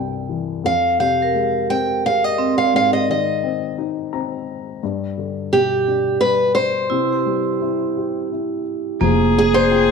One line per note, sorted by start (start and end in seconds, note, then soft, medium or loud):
0.00 0.60 C2 medium
0.00 0.61 G2 soft
0.00 0.62 C3 soft
0.29 0.63 E3 soft
0.64 2.69 F2 soft
0.64 0.98 F5 medium
0.99 2.35 C3 soft
0.99 3.05 G4 soft
0.99 1.70 F5 medium
1.22 3.24 A#4 soft
1.34 2.03 G#3 soft
1.69 2.70 C4 soft
1.69 2.06 G5 medium
2.04 2.71 G#3 soft
2.04 2.24 F5 medium
2.24 2.57 D#5 medium
2.38 3.04 C4 medium
2.58 2.73 F5 medium
2.74 4.78 G#2 medium
2.74 2.93 F5 medium
2.93 3.08 D#5 medium
3.09 4.44 D#3 soft
3.09 3.75 D#5 medium
3.43 4.11 C4 soft
3.78 4.79 D#4 soft
4.13 4.80 C4 soft
4.13 4.78 A#5 medium
4.83 6.88 G2 medium
5.18 6.53 D3 soft
5.53 6.88 B2 soft
5.53 6.18 G4 medium
5.88 6.89 D4 soft
6.21 6.89 G3 soft
6.21 6.54 B4 medium
6.55 8.27 C5 medium
6.90 8.98 C3 soft
6.90 8.99 E4 medium
7.13 9.19 G4 soft
7.26 8.63 G3 soft
7.61 8.31 E4 soft
7.97 8.99 G4 soft
8.32 9.00 E4 soft
9.01 9.91 F1 medium
9.01 9.91 F3 medium
9.01 9.91 A#3 medium
9.01 9.91 G#4 loud
9.38 9.55 G#4 medium
9.54 9.91 C5 medium
9.71 9.91 F4 soft
9.71 9.91 G#4 medium
9.71 9.91 G5 soft